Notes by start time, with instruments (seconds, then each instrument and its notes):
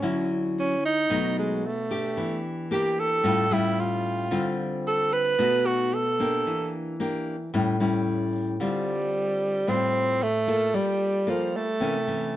Already playing: tenor saxophone C#4
0.02 nylon-string guitar D3 F#3 C#4 E4
0.59 tenor saxophone C#4
0.86 tenor saxophone D#4
1.10 nylon-string guitar B2 F#3 A3 D#4
1.39 tenor saxophone G#3
1.67 tenor saxophone A3
1.91 nylon-string guitar D4 G4
2.17 nylon-string guitar E3
2.71 nylon-string guitar A#3 D4 G4, tenor saxophone G4
3.00 tenor saxophone A4
3.24 nylon-string guitar A2 G3 C#4 F4
3.51 nylon-string guitar G3 C#4 F4, tenor saxophone E4
3.80 tenor saxophone F4
4.31 nylon-string guitar D3 G3 C4 F4
4.87 tenor saxophone A4
5.13 tenor saxophone B4
5.39 nylon-string guitar B2 A3 D#4 F#4
5.66 tenor saxophone F#4
5.94 tenor saxophone A4
6.20 nylon-string guitar A#3 D4 G4
6.47 nylon-string guitar E3
7.00 nylon-string guitar A#3 D4 G4
7.54 nylon-string guitar A2 G3 C#4 E4
7.80 nylon-string guitar G3 C#4 E4
8.60 nylon-string guitar D3 G3 C4 F4, tenor saxophone G3
9.67 nylon-string guitar A2 G3 C4 F4, tenor saxophone C4
10.23 tenor saxophone A3
10.47 nylon-string guitar A#3 F4 A4
10.74 nylon-string guitar G3, tenor saxophone G3
11.27 tenor saxophone F3, nylon-string guitar A#3 F4 A4
11.57 tenor saxophone A3
11.80 nylon-string guitar C3 E3 A#3 C#4
12.07 nylon-string guitar E3 C#4